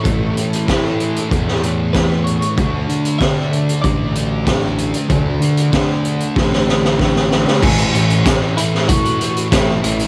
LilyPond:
<<
  \new Staff \with { instrumentName = "Clean electric guitar" } { \time 4/4 \key a \major \tempo 4 = 95 a'2 r4 b'8 cis''8~ | cis''4 e''4 d''2~ | d''2. r4 | cis'4. e'8 fis'4 e'4 | }
  \new Staff \with { instrumentName = "Distorted electric guitar" } { \time 4/4 \key a \major <a, e a>4 <a, e a>4 <a, e a>8 <e a>8 <a, e a>4 | <d a d'>4 <d a d'>4 <d a d'>8 <a d'>8 <d a d'>4 | <d a d'>4 <d a d'>4 <d a d'>8 <a d'>8 <d a d'>4 | <a, e a>8 <e a>8 <a, e a>8 <e a>8 <a, e a>8 <e a>8 <a, e a>8 <e a>8 | }
  \new Staff \with { instrumentName = "Picked electric bass" } { \clef bass \time 4/4 \key a \major a,,8 a,4. e,2 | d,8 d4. a,,2 | d,8 d4. a,,2 | a,,8 a,,8 r2 a,,8 a,,8 | }
  \new DrumStaff \with { instrumentName = "Drums" } \drummode { \time 4/4 <hh bd>8 hh16 hh16 <hh bd sn>8 hh16 hh16 <hh bd>16 sn16 hh8 <hh bd sn>8 hh16 hh16 | <hh bd>8 hh16 hh16 <hh bd sn>8 hh16 hh16 <hh bd>8 hh8 <hh bd sn>8 hh16 hh16 | <hh bd>8 hh16 hh16 <hh bd sn>8 hh16 hh16 <bd sn>16 sn16 sn16 sn16 <bd sn>16 sn16 sn16 sn16 | <cymc bd>16 hh16 hh16 hh16 <hh bd sn>8 hh16 sn16 <hh bd>16 hh16 hh16 hh16 <hh bd sn>8 hh16 hh16 | }
>>